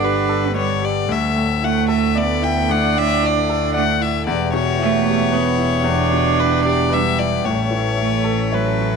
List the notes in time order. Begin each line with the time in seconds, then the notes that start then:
Already playing: G1 G2 D3 B3 D4 A4 D5
0.01 G4 B4
0.29 A4
0.55 G3 B4 C#5
0.82 G4 D5
1.09 D2 A3 E5
1.36 A2
1.62 A3 E4 F#5
1.88 A4 E5
2.15 B3 D5
2.42 E4 G5
2.69 D2 D4 F#5
2.96 A2 E5
3.22 E4 D5
3.49 A4
3.74 A3 D5 F#5
4.01 E4 E5
4.26 E1 E2 B3 G4 D5
4.53 B2 C#5
4.79 A3 E4
5.06 G4
5.32 B3 B4
5.58 E4
5.84 E2 D4
6.12 B2
6.37 E4 B4
6.64 G4 D5
6.90 G3 B4 E5
7.19 E4 D5
7.44 A1 A2 C#4 A4 C#5 E5
7.71 E3
7.97 A3 E4
8.24 A4
8.52 F#3 B4 C#5
8.79 E4